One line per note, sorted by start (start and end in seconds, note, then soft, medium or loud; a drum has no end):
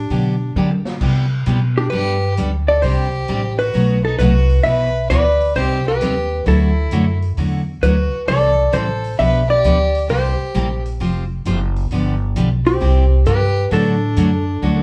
0.00 0.52 D4 medium
0.00 0.52 G4 medium
0.10 0.54 B2 medium
0.10 0.33 D3 medium
0.10 0.34 F#3 medium
0.10 0.34 B3 medium
0.10 0.34 D4 medium
0.10 0.34 G4 medium
0.10 open hi-hat soft
0.56 1.00 D3 medium
0.56 0.68 D3 medium
0.56 0.68 F#3 medium
0.56 0.69 B3 medium
0.56 0.69 D4 medium
0.56 0.69 G4 medium
0.56 high tom medium
0.71 high tom medium
0.85 snare medium
1.01 1.46 C3 medium
1.01 1.24 C3 medium
1.01 1.24 G3 medium
1.01 1.25 B3 medium
1.01 1.25 E4 medium
1.01 1.25 G4 medium
1.01 kick medium
1.01 crash medium
1.46 1.91 B2 medium
1.46 1.59 C3 medium
1.46 1.59 G3 medium
1.46 1.59 B3 medium
1.46 1.59 E4 medium
1.46 1.59 G4 medium
1.46 closed hi-hat medium
1.77 1.91 D4 medium
1.77 1.93 G4 medium
1.90 2.36 G2 medium
1.90 2.15 G3 medium
1.90 2.16 B3 medium
1.90 2.16 D4 medium
1.90 2.34 G4 loud
1.90 2.16 A4 medium
1.90 2.33 B4 loud
1.90 open hi-hat soft
2.37 2.82 D2 loud
2.37 2.50 G3 medium
2.37 2.50 B3 medium
2.37 2.50 D4 medium
2.37 2.50 A4 medium
2.37 closed hi-hat medium
2.68 2.82 A4 medium
2.68 2.82 D5 medium
2.82 3.27 C2 medium
2.82 3.06 C3 medium
2.82 3.06 G3 medium
2.82 3.06 C4 medium
2.82 3.07 D4 medium
2.82 3.55 G4 medium
2.82 3.07 G4 medium
2.82 3.58 C5 medium
2.82 open hi-hat soft
3.28 3.73 A1 medium
3.28 3.41 C3 medium
3.28 3.41 G3 medium
3.28 3.41 C4 medium
3.28 3.41 D4 medium
3.28 3.41 G4 medium
3.28 closed hi-hat medium
3.59 4.02 F#4 medium
3.59 4.01 B4 medium
3.59 open hi-hat soft
3.74 4.18 B1 medium
3.74 3.97 B2 medium
3.74 3.97 F#3 medium
3.74 3.97 A3 medium
3.74 3.97 D#4 medium
3.74 3.98 F#4 medium
3.74 open hi-hat soft
4.05 4.19 D#4 medium
4.05 4.18 A4 medium
4.19 4.63 C2 loud
4.19 4.32 B2 medium
4.19 4.32 F#3 medium
4.19 4.32 A3 medium
4.19 4.32 D#4 medium
4.19 4.62 F#4 medium
4.19 4.32 F#4 medium
4.19 4.66 B4 medium
4.19 closed hi-hat medium
4.49 open hi-hat soft
4.64 5.09 B1 medium
4.64 4.88 B2 medium
4.64 4.88 E3 medium
4.64 4.88 B3 medium
4.64 4.88 E4 medium
4.64 4.89 F#4 medium
4.64 5.07 B4 medium
4.64 5.10 E5 loud
4.64 open hi-hat soft
5.10 5.54 D2 loud
5.10 5.22 B2 medium
5.10 5.23 E3 medium
5.10 5.23 B3 medium
5.10 5.23 E4 medium
5.10 5.23 F#4 medium
5.10 5.52 B4 medium
5.10 5.52 D5 loud
5.10 closed hi-hat medium
5.40 open hi-hat soft
5.55 5.99 C2 medium
5.55 5.79 C3 medium
5.55 5.79 G3 medium
5.55 5.79 C4 medium
5.55 5.79 D#4 medium
5.55 5.85 G4 medium
5.55 5.79 G4 medium
5.55 5.87 C5 medium
5.55 open hi-hat soft
5.87 6.43 G4 medium
5.87 6.48 B4 medium
6.00 6.45 D#2 medium
6.00 6.13 C3 medium
6.00 6.13 G3 medium
6.00 6.14 C4 medium
6.00 6.14 D#4 medium
6.00 6.14 G4 medium
6.00 closed hi-hat medium
6.46 6.90 D2 medium
6.46 6.69 D3 medium
6.46 6.69 F#3 medium
6.46 6.69 A3 medium
6.46 6.69 E4 medium
6.46 7.19 E4 medium
6.46 6.70 F#4 medium
6.46 7.19 A4 medium
6.46 open hi-hat soft
6.91 7.36 F#2 medium
6.91 7.04 D3 medium
6.91 7.04 F#3 medium
6.91 7.04 A3 medium
6.91 7.04 E4 medium
6.91 7.05 F#4 medium
6.91 closed hi-hat medium
7.22 open hi-hat soft
7.37 7.81 E2 medium
7.37 7.60 D3 medium
7.37 7.60 F#3 medium
7.37 7.61 A3 medium
7.37 7.61 E4 medium
7.37 7.61 F#4 medium
7.37 open hi-hat soft
7.82 8.11 D2 medium
7.82 7.95 D3 medium
7.82 7.95 F#3 medium
7.82 7.95 A3 medium
7.82 7.95 E4 medium
7.82 8.25 F#4 medium
7.82 7.95 F#4 medium
7.82 8.29 B4 medium
7.82 closed hi-hat medium
8.28 8.72 C2 medium
8.28 8.51 C3 medium
8.28 8.51 E3 medium
8.28 8.51 G3 medium
8.28 8.51 C4 medium
8.28 8.51 E4 medium
8.28 8.70 A4 medium
8.28 8.51 A4 medium
8.28 8.75 D5 loud
8.28 open hi-hat medium
8.72 9.17 A1 medium
8.72 8.85 C3 medium
8.72 8.85 E3 medium
8.72 8.85 G3 medium
8.72 8.85 C4 medium
8.72 8.86 E4 medium
8.72 8.85 A4 medium
8.72 9.15 A4 medium
8.72 9.20 C5 medium
8.72 closed hi-hat medium
9.04 open hi-hat soft
9.19 9.63 B1 medium
9.19 9.42 B2 medium
9.19 9.42 F3 medium
9.19 9.42 B3 medium
9.19 9.42 D4 medium
9.19 9.42 G4 medium
9.19 9.47 B4 medium
9.19 9.42 B4 medium
9.19 9.50 E5 loud
9.19 open hi-hat soft
9.49 10.05 G4 loud
9.49 10.06 D5 loud
9.64 10.08 D2 medium
9.64 9.76 B2 medium
9.64 9.77 F3 medium
9.64 9.77 B3 medium
9.64 9.77 D4 medium
9.64 9.77 G4 medium
9.64 9.77 B4 medium
9.64 closed hi-hat medium
9.95 open hi-hat soft
10.09 10.38 C2 medium
10.09 10.32 C3 medium
10.09 10.32 G3 medium
10.09 10.32 A#3 medium
10.09 10.32 E4 medium
10.09 10.81 G4 medium
10.09 10.33 G4 medium
10.09 10.81 C5 medium
10.09 open hi-hat soft
10.40 muted upright bass stroke soft
10.54 10.98 A#1 medium
10.54 10.67 C3 medium
10.54 10.67 G3 medium
10.54 10.67 A#3 medium
10.54 10.67 E4 medium
10.54 10.67 G4 medium
10.54 closed hi-hat medium
10.86 open hi-hat soft
11.00 11.44 F1 medium
11.00 11.23 F3 medium
11.00 11.23 C4 medium
11.00 11.23 F4 medium
11.00 11.23 G4 medium
11.00 11.23 C5 medium
11.00 open hi-hat soft
11.45 11.89 F#1 loud
11.45 11.58 F3 medium
11.45 11.58 C4 medium
11.45 11.58 F4 medium
11.45 11.58 G4 medium
11.45 11.58 C5 medium
11.45 closed hi-hat medium
11.76 open hi-hat soft
11.90 12.34 G1 medium
11.90 12.14 D3 medium
11.90 12.14 F3 medium
11.90 12.14 B3 medium
11.90 12.14 D4 medium
11.90 12.14 G4 medium
11.90 open hi-hat medium
12.36 12.79 B1 medium
12.36 12.48 D3 medium
12.36 12.48 F3 medium
12.36 12.48 B3 medium
12.36 12.48 D4 medium
12.36 12.48 G4 medium
12.36 closed hi-hat medium
12.65 13.22 C4 medium
12.65 13.28 G4 medium
12.65 open hi-hat soft
12.80 13.25 C2 medium
12.80 13.04 C3 medium
12.80 13.04 G3 medium
12.80 13.04 C4 medium
12.80 13.04 E4 medium
12.80 13.04 G4 medium
12.80 open hi-hat soft
13.26 13.70 G2 medium
13.26 13.38 C3 medium
13.26 13.38 G3 medium
13.26 13.38 C4 medium
13.26 13.39 E4 medium
13.26 13.68 G4 medium
13.26 13.39 G4 medium
13.26 13.73 B4 loud
13.26 closed hi-hat medium
13.71 14.15 A2 medium
13.71 13.94 D3 medium
13.71 13.94 F#3 medium
13.71 13.94 A3 medium
13.71 13.94 D4 medium
13.71 14.83 D4 medium
13.71 13.94 F#4 medium
13.71 14.83 A4 medium
13.71 open hi-hat medium
14.17 14.60 F#2 loud
14.17 14.29 D3 medium
14.17 14.29 F#3 medium
14.17 14.29 A3 medium
14.17 14.29 D4 medium
14.17 14.29 F#4 medium
14.17 closed hi-hat medium
14.62 14.83 D2 medium
14.62 14.83 D3 medium
14.62 14.83 F#3 medium
14.62 14.83 A3 medium
14.62 14.83 D4 medium
14.62 14.83 F#4 medium
14.62 high tom soft
14.77 high tom medium